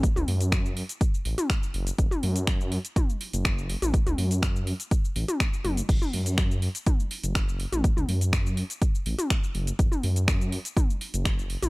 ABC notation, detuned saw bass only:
X:1
M:4/4
L:1/16
Q:1/4=123
K:F#m
V:1 name="Detuned saw bass" clef=bass
z C,, F,,4- F,, z3 A,,, z3 F,,, z | F,,, z F,,4- F,, z4 F,,,4 A,,, | z C,, F,,4- F,, z3 A,,, z3 F,,, z | F,,, z F,,4- F,, z4 F,,,4 A,,, |
z C,, F,,4- F,, z3 A,,, z3 F,,, z | F,,, z F,,4- F,, z4 F,,,4 A,,, |]